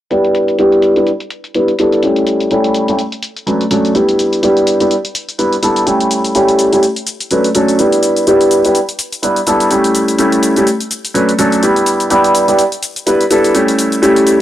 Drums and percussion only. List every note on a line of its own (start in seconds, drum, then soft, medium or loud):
0.11 closed hi-hat medium
0.11 shaker soft
0.24 closed hi-hat soft
0.24 shaker soft
0.35 closed hi-hat medium
0.35 shaker medium
0.48 closed hi-hat soft
0.48 shaker soft
0.59 closed hi-hat medium
0.59 shaker soft
0.72 closed hi-hat soft
0.72 shaker soft
0.82 closed hi-hat medium
0.82 shaker medium
0.96 closed hi-hat soft
0.96 shaker soft
1.07 closed hi-hat medium
1.07 shaker soft
1.20 closed hi-hat soft
1.20 shaker soft
1.30 closed hi-hat medium
1.30 shaker medium
1.44 closed hi-hat soft
1.44 shaker soft
1.54 closed hi-hat medium
1.54 shaker soft
1.68 closed hi-hat soft
1.68 shaker soft
1.79 closed hi-hat medium
1.79 shaker medium
1.92 closed hi-hat soft
1.92 shaker soft
2.03 closed hi-hat medium
2.03 shaker soft
2.16 closed hi-hat soft
2.16 shaker soft
2.27 closed hi-hat medium
2.27 shaker medium
2.40 closed hi-hat soft
2.40 shaker soft
2.51 closed hi-hat medium
2.51 shaker soft
2.64 closed hi-hat soft
2.64 shaker soft
2.74 closed hi-hat medium
2.74 shaker medium
2.88 closed hi-hat soft
2.88 shaker soft
2.99 closed hi-hat medium
2.99 shaker soft
3.12 closed hi-hat soft
3.12 shaker soft
3.23 closed hi-hat medium
3.23 shaker medium
3.37 closed hi-hat soft
3.37 shaker soft
3.47 closed hi-hat medium
3.47 shaker soft
3.61 closed hi-hat soft
3.61 shaker soft
3.71 closed hi-hat medium
3.71 shaker medium
3.85 closed hi-hat soft
3.85 shaker soft
3.95 closed hi-hat medium
3.95 shaker soft
4.09 closed hi-hat soft
4.09 shaker soft
4.19 closed hi-hat medium
4.19 shaker medium
4.33 closed hi-hat soft
4.33 shaker soft
4.43 closed hi-hat medium
4.43 shaker soft
4.57 closed hi-hat soft
4.57 shaker soft
4.67 closed hi-hat medium
4.67 shaker medium
4.80 closed hi-hat soft
4.80 shaker soft
4.91 closed hi-hat medium
4.91 shaker soft
5.05 closed hi-hat soft
5.05 shaker soft
5.15 closed hi-hat medium
5.15 shaker medium
5.29 closed hi-hat soft
5.29 shaker soft
5.39 closed hi-hat medium
5.39 shaker soft
5.53 closed hi-hat soft
5.53 shaker soft
5.63 closed hi-hat medium
5.63 shaker medium
5.76 closed hi-hat soft
5.76 shaker soft
5.87 closed hi-hat medium
5.87 shaker soft
6.00 closed hi-hat soft
6.00 shaker soft
6.11 closed hi-hat medium
6.11 shaker medium
6.24 closed hi-hat soft
6.24 shaker soft
6.35 closed hi-hat medium
6.35 shaker soft
6.48 closed hi-hat soft
6.48 shaker soft
6.59 closed hi-hat medium
6.59 shaker medium
6.73 closed hi-hat soft
6.73 shaker soft
6.83 closed hi-hat medium
6.83 shaker soft
6.96 closed hi-hat soft
6.96 shaker soft
7.07 closed hi-hat medium
7.07 shaker medium
7.20 closed hi-hat soft
7.20 shaker soft
7.31 closed hi-hat medium
7.31 shaker soft
7.44 closed hi-hat soft
7.44 shaker soft
7.55 closed hi-hat medium
7.55 shaker medium
7.68 closed hi-hat soft
7.68 shaker soft
7.79 closed hi-hat medium
7.79 shaker soft
7.92 closed hi-hat soft
7.92 shaker soft
8.03 closed hi-hat medium
8.03 shaker medium
8.16 closed hi-hat soft
8.16 shaker soft
8.27 closed hi-hat medium
8.27 shaker soft
8.41 closed hi-hat soft
8.41 shaker soft
8.51 closed hi-hat medium
8.51 shaker medium
8.65 closed hi-hat soft
8.65 shaker soft
8.75 closed hi-hat medium
8.75 shaker soft
8.89 closed hi-hat soft
8.89 shaker soft
8.99 closed hi-hat medium
8.99 shaker medium
9.12 closed hi-hat soft
9.12 shaker soft
9.23 closed hi-hat medium
9.23 shaker soft
9.36 closed hi-hat soft
9.36 shaker soft
9.47 closed hi-hat medium
9.47 shaker medium
9.60 closed hi-hat soft
9.60 shaker soft
9.71 closed hi-hat medium
9.71 shaker soft
9.84 closed hi-hat soft
9.84 shaker soft
9.95 closed hi-hat medium
9.95 shaker medium
10.08 closed hi-hat soft
10.08 shaker soft
10.19 closed hi-hat medium
10.19 shaker soft
10.32 closed hi-hat soft
10.32 shaker soft
10.43 closed hi-hat medium
10.43 shaker medium
10.56 closed hi-hat soft
10.56 shaker soft
10.67 closed hi-hat medium
10.67 shaker soft
10.80 closed hi-hat soft
10.80 shaker soft
10.91 closed hi-hat medium
10.91 shaker medium
11.05 closed hi-hat soft
11.05 shaker soft
11.15 closed hi-hat medium
11.15 shaker soft
11.29 closed hi-hat soft
11.29 shaker soft
11.39 closed hi-hat medium
11.39 shaker medium
11.52 closed hi-hat soft
11.52 shaker soft
11.63 closed hi-hat medium
11.63 shaker soft
11.76 closed hi-hat soft
11.76 shaker soft
11.86 closed hi-hat medium
11.86 shaker medium
12.00 closed hi-hat soft
12.00 shaker soft
12.10 closed hi-hat medium
12.10 shaker soft
12.24 closed hi-hat soft
12.24 shaker soft
12.35 closed hi-hat medium
12.35 shaker medium
12.48 closed hi-hat soft
12.48 shaker soft
12.59 closed hi-hat medium
12.59 shaker soft
12.72 closed hi-hat soft
12.72 shaker soft
12.83 closed hi-hat medium
12.83 shaker medium
12.96 closed hi-hat soft
12.96 shaker soft
13.07 closed hi-hat medium
13.07 shaker soft
13.21 closed hi-hat soft
13.21 shaker soft
13.31 closed hi-hat medium
13.31 shaker medium
13.44 closed hi-hat soft
13.44 shaker soft
13.55 closed hi-hat medium
13.55 shaker soft
13.68 closed hi-hat soft
13.68 shaker soft
13.79 closed hi-hat medium
13.79 shaker medium
13.92 closed hi-hat soft
13.92 shaker soft
14.03 closed hi-hat medium
14.03 shaker soft
14.16 closed hi-hat soft
14.16 shaker soft
14.27 closed hi-hat medium
14.27 shaker medium